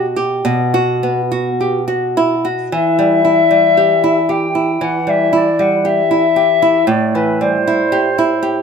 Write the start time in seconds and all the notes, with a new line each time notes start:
Already playing: B2 F#4
0.16 G4
0.45 B2
0.74 F#4
1.03 B3
1.32 F#4
1.61 G4
1.88 F#4
2.17 E4
2.45 F#4
2.72 E3 E5
2.99 G3
3.25 E4
3.51 G3
3.77 G4
4.04 E4
4.29 G4 G5
4.55 E4
4.81 E3 F#5
5.07 G3 E5
5.33 E4 D5
5.59 G3 F#5
5.85 G4 E5
6.11 E4
6.36 G4
6.62 E4
6.87 A2 D5
7.14 E3 B4
7.40 G3 C5
7.67 E4
7.92 G4
8.18 E4
8.43 G4